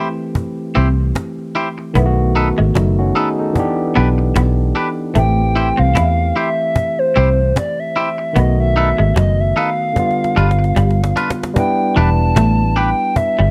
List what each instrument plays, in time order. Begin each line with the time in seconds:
Already playing: tine electric piano E3 A3 C4 G4
0.18 cajon slap
0.35 cajon bass
0.58 cajon slap
0.75 fingered electric bass C2, clean electric guitar C4 E4 G4 C5, cajon slap
0.97 cajon slap
1.15 cajon bass, cajon slap
1.38 cajon slap
1.55 clean electric guitar E4 G4 C5, cajon slap
1.78 muted clean electric guitar stroke, cajon slap
1.94 fingered electric bass B1, tine electric piano D#3 A3 B3, clean electric guitar B3, cajon bass
1.99 tine electric piano E4
2.06 tine electric piano F#4
2.17 cajon slap
2.35 clean electric guitar D#4 A4 B4, cajon slap
2.58 fingered electric bass G#1, clean electric guitar G#3, cajon slap
2.75 fingered electric bass F#1, clean electric guitar F#3, tine electric piano A3 D#4, cajon bass, cajon slap
2.98 tine electric piano C#4 F#4, cajon slap
3.15 clean electric guitar D#4 A4 B4, tine electric piano D#4 G#4, cajon slap
3.38 tine electric piano D#4 A4, cajon slap
3.53 tine electric piano E3 B3, cajon bass
3.57 tine electric piano D4 G4
3.78 cajon slap
3.95 fingered electric bass B1, clean electric guitar B3 D4 G4 B4, cajon slap
4.18 muted clean electric guitar stroke, cajon slap
4.36 fingered electric bass B1, clean electric guitar B3, cajon bass, cajon slap
4.58 cajon slap
4.75 clean electric guitar D4 G4 B4, cajon slap
4.99 cajon slap
5.13 fingered electric bass A1, tine electric piano E3 A3 C4, clean electric guitar A3, soft synth lead G5, cajon bass
5.19 tine electric piano G4
5.38 cajon slap
5.56 clean electric guitar E4 G4 C5, cajon slap
5.77 fingered electric bass C2, clean electric guitar C4, soft synth lead F5, cajon slap
5.95 fingered electric bass E2, clean electric guitar E4, cajon bass, cajon slap
6.18 cajon slap
6.36 clean electric guitar E4 G4 C5, soft synth lead E5, cajon slap
6.58 cajon slap
6.76 cajon bass
6.99 soft synth lead C5, cajon slap
7.15 fingered electric bass C2, clean electric guitar C4 E4 G4 C5, cajon slap
7.39 cajon slap
7.56 soft synth lead D5, cajon bass, cajon slap
7.79 soft synth lead E5, cajon slap
7.96 clean electric guitar E4 G4 C5, cajon slap
8.18 muted clean electric guitar stroke, cajon slap
8.33 fingered electric bass B1, tine electric piano D#3 A3, clean electric guitar B3, cajon bass
8.37 tine electric piano B3 F#4, soft synth lead D#5
8.58 soft synth lead E5, cajon slap
8.76 clean electric guitar D#4 A4 B4, cajon slap
8.98 fingered electric bass G#1, clean electric guitar G#3, cajon slap
9.16 fingered electric bass F#1, clean electric guitar F#3, soft synth lead D#5, cajon bass, cajon slap
9.38 soft synth lead E5, cajon slap
9.56 clean electric guitar D#4 A4 B4, soft synth lead F5, cajon slap
9.79 cajon slap
9.93 tine electric piano D3 G3, cajon bass, cajon slap
9.98 tine electric piano B3 F4
10.11 cajon slap
10.19 cajon slap
10.24 cajon slap
10.36 fingered electric bass G1, clean electric guitar G3 D4 F4 B4, cajon slap
10.38 cajon slap
10.51 cajon slap
10.59 muted clean electric guitar stroke, cajon slap
10.64 cajon slap
10.76 fingered electric bass G1, clean electric guitar G3, cajon bass, cajon slap
10.90 cajon slap
10.99 cajon slap
11.04 cajon slap
11.16 clean electric guitar D4 F4 B4, cajon slap
11.30 cajon slap
11.39 cajon slap
11.43 cajon slap
11.54 tine electric piano G3 B3 D4, soft synth lead G5, cajon bass
11.59 tine electric piano E4 B4
11.78 cajon slap
11.96 fingered electric bass E1, clean electric guitar E3 D4 G4 B4, soft synth lead A5, cajon slap
12.19 cajon slap
12.36 fingered electric bass A1, clean electric guitar A3, cajon bass, cajon slap
12.58 cajon slap
12.76 clean electric guitar D4 G4 B4, soft synth lead G5, cajon slap
12.99 cajon slap
13.16 soft synth lead E5, cajon bass
13.38 fingered electric bass G1, clean electric guitar G3, cajon slap